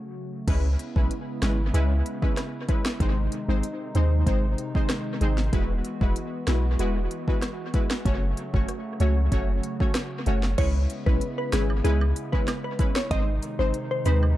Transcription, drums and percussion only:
0.48 kick, closed hi-hat, crash
0.79 closed hi-hat
0.96 kick
1.11 closed hi-hat
1.42 cross-stick, snare, closed hi-hat
1.74 closed hi-hat
2.06 closed hi-hat
2.22 kick
2.37 cross-stick, snare, closed hi-hat
2.69 kick, closed hi-hat
2.85 cross-stick, snare
3.00 kick, closed hi-hat
3.32 closed hi-hat
3.63 closed hi-hat
3.95 closed hi-hat
4.27 kick, closed hi-hat
4.58 closed hi-hat
4.75 kick
4.89 cross-stick, snare, closed hi-hat
5.21 closed hi-hat
5.38 snare
5.53 kick, closed hi-hat
5.85 closed hi-hat
6.01 kick
6.16 closed hi-hat
6.47 cross-stick, snare, closed hi-hat
6.79 closed hi-hat
7.11 closed hi-hat
7.28 kick
7.42 cross-stick, snare, closed hi-hat
7.74 kick, closed hi-hat
7.90 cross-stick, snare
8.05 kick, closed hi-hat
8.37 closed hi-hat
8.54 kick
8.68 cross-stick, closed hi-hat
9.00 closed hi-hat
9.32 kick, closed hi-hat
9.63 closed hi-hat
9.80 kick
9.94 cross-stick, snare, closed hi-hat
10.26 closed hi-hat
10.43 snare
10.58 kick, closed hi-hat, crash
10.90 closed hi-hat, cabasa
11.07 kick
11.21 closed hi-hat
11.52 cross-stick, snare, closed hi-hat, cabasa
11.70 high woodblock
11.85 closed hi-hat
12.01 high woodblock
12.16 closed hi-hat, cabasa
12.33 kick
12.48 cross-stick, snare, closed hi-hat, high woodblock
12.79 kick, closed hi-hat, cabasa
12.95 cross-stick, snare
13.11 kick, closed hi-hat
13.42 closed hi-hat, cabasa
13.74 closed hi-hat
14.05 closed hi-hat, cabasa
14.23 high woodblock

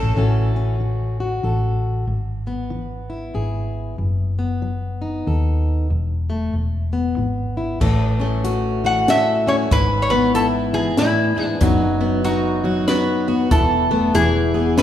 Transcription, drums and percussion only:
7.81 kick, crash
8.45 closed hi-hat
9.08 snare, closed hi-hat
9.71 kick, closed hi-hat
10.35 closed hi-hat
10.97 snare, closed hi-hat
11.61 kick, closed hi-hat
12.24 closed hi-hat
12.88 snare, closed hi-hat
13.51 kick, closed hi-hat
14.15 closed hi-hat
14.78 snare, closed hi-hat

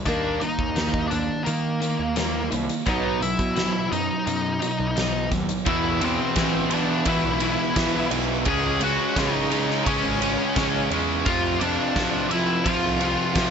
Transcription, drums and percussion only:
0.06 kick, closed hi-hat
0.41 closed hi-hat
0.59 kick
0.76 snare, closed hi-hat
0.94 kick
1.11 closed hi-hat
1.46 closed hi-hat
1.82 closed hi-hat
2.16 snare, closed hi-hat
2.52 closed hi-hat
2.69 closed hi-hat
2.87 kick, closed hi-hat
3.23 closed hi-hat
3.39 kick, closed hi-hat
3.56 snare, closed hi-hat
3.93 closed hi-hat
4.27 closed hi-hat
4.62 closed hi-hat
4.97 snare, closed hi-hat
5.32 kick, snare, closed hi-hat
5.49 closed hi-hat
5.66 kick, ride
6.01 ride
6.36 kick, snare, ride
6.71 ride
7.05 kick, ride
7.40 ride
7.76 kick, snare, ride
8.11 ride
8.45 kick, ride
8.81 ride
9.16 kick, snare, ride
9.51 ride
9.70 snare
9.86 kick, ride
10.22 ride
10.56 kick, snare, ride
10.91 ride
11.26 kick, ride
11.61 ride
11.96 kick, snare, ride
12.31 ride
12.66 kick, ride
13.01 ride
13.35 kick, snare, ride

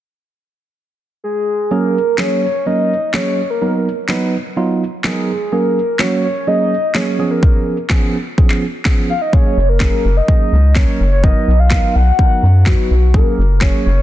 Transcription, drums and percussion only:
2.18 snare, clap
3.14 snare, clap
4.09 snare, clap
5.04 snare, clap
5.99 snare, clap
6.95 snare, clap
7.43 kick
7.90 kick, snare, clap
8.38 kick
8.50 clap
8.85 kick, snare, clap
9.33 kick
9.80 kick, snare, clap
10.28 kick
10.75 kick, snare, clap
11.24 kick
11.70 kick, snare, clap
12.19 kick
12.66 kick, snare, clap
13.14 kick
13.61 kick, snare, clap

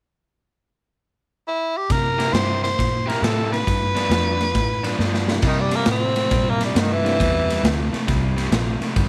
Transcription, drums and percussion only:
1.90 kick, snare, ride
2.20 snare, ride
2.34 snare, ride
2.65 snare, ride
2.79 kick, snare, ride
3.09 snare, ride
3.24 snare, ride
3.54 snare, ride
3.67 kick, snare, ride
3.96 snare, ride
4.11 snare, ride
4.40 snare, ride
4.55 kick, snare, ride
4.84 snare, ride
5.00 snare
5.14 snare
5.28 snare
5.42 kick, snare, crash
5.71 snare, ride
5.86 snare, ride
6.16 snare, ride
6.31 kick, snare, ride
6.61 snare, ride
6.76 snare, ride
7.06 snare, ride
7.20 kick, snare, ride
7.50 snare, ride
7.65 snare, ride
7.94 snare, ride
8.08 kick, snare, ride
8.38 snare, ride
8.52 snare, ride
8.82 snare, ride
8.96 kick, snare, ride

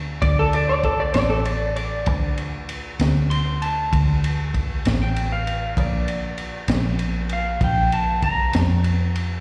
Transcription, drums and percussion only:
0.22 kick, ride
0.53 ride
0.83 kick, ride
1.14 snare, ride
1.45 ride
1.76 ride
2.06 kick, ride
2.38 ride
2.69 ride
3.00 snare, ride
3.31 ride
3.62 ride
3.93 kick, ride
4.24 ride
4.54 kick, ride
4.85 snare, ride
5.16 ride
5.47 ride
5.77 kick, ride
6.08 ride
6.38 ride
6.68 snare, ride
6.99 ride
7.29 ride
7.61 kick, ride
7.92 ride
8.22 kick, ride
8.53 snare, ride
8.84 ride
9.16 ride

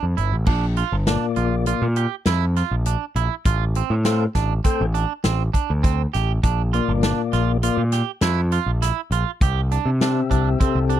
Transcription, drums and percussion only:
0.18 closed hi-hat
0.46 kick, crash
0.77 closed hi-hat
1.07 snare, closed hi-hat
1.36 closed hi-hat
1.66 closed hi-hat
1.96 closed hi-hat
2.26 snare, closed hi-hat
2.56 snare, closed hi-hat
2.86 closed hi-hat
3.16 closed hi-hat
3.45 kick, closed hi-hat
3.75 closed hi-hat
4.05 snare, closed hi-hat
4.35 kick, snare, closed hi-hat
4.64 kick, closed hi-hat
4.95 closed hi-hat
5.24 snare, closed hi-hat
5.54 kick, closed hi-hat
5.84 kick, closed hi-hat
6.14 snare, closed hi-hat
6.43 kick, closed hi-hat
6.74 closed hi-hat
7.03 snare, closed hi-hat
7.33 snare, closed hi-hat
7.63 closed hi-hat
7.92 snare, closed hi-hat
8.21 snare, closed hi-hat
8.52 closed hi-hat
8.82 snare, closed hi-hat
9.12 closed hi-hat
9.41 kick, closed hi-hat
9.71 closed hi-hat
10.01 snare, closed hi-hat
10.31 kick, closed hi-hat
10.61 kick, closed hi-hat
10.90 closed hi-hat

